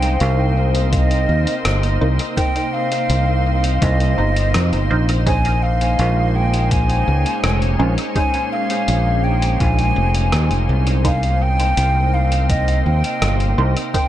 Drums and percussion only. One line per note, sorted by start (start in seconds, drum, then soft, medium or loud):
0.02 closed hi-hat soft
0.20 closed hi-hat medium
0.75 closed hi-hat soft
0.93 kick loud
0.93 closed hi-hat medium
1.11 closed hi-hat soft
1.47 closed hi-hat soft
1.65 cross-stick loud
1.65 closed hi-hat medium
1.83 closed hi-hat soft
2.19 closed hi-hat soft
2.37 kick loud
2.37 closed hi-hat soft
2.56 closed hi-hat soft
2.92 closed hi-hat soft
3.10 closed hi-hat medium
3.64 closed hi-hat soft
3.82 kick loud
3.82 closed hi-hat medium
4.00 closed hi-hat soft
4.36 closed hi-hat soft
4.54 cross-stick loud
4.54 closed hi-hat medium
4.73 closed hi-hat soft
5.09 closed hi-hat soft
5.26 kick loud
5.26 closed hi-hat soft
5.45 closed hi-hat soft
5.81 closed hi-hat soft
5.99 closed hi-hat soft
6.54 closed hi-hat soft
6.71 kick loud
6.71 closed hi-hat soft
6.90 closed hi-hat soft
7.26 closed hi-hat soft
7.44 cross-stick medium
7.44 closed hi-hat medium
7.62 closed hi-hat soft
7.98 closed hi-hat soft
8.16 kick loud
8.16 closed hi-hat soft
8.34 closed hi-hat soft
8.70 closed hi-hat soft
8.88 closed hi-hat soft
9.42 closed hi-hat soft
9.60 kick loud
9.60 closed hi-hat soft
9.79 closed hi-hat soft
10.15 closed hi-hat soft
10.32 cross-stick medium
10.32 closed hi-hat soft
10.51 closed hi-hat soft
10.87 closed hi-hat soft
11.05 kick loud
11.05 closed hi-hat medium
11.23 closed hi-hat soft
11.60 closed hi-hat soft
11.77 closed hi-hat medium
12.32 closed hi-hat soft
12.50 kick loud
12.50 closed hi-hat soft
12.68 closed hi-hat soft
13.04 closed hi-hat soft
13.22 cross-stick medium
13.22 closed hi-hat medium
13.40 closed hi-hat soft
13.77 closed hi-hat soft
13.94 kick loud
13.94 closed hi-hat medium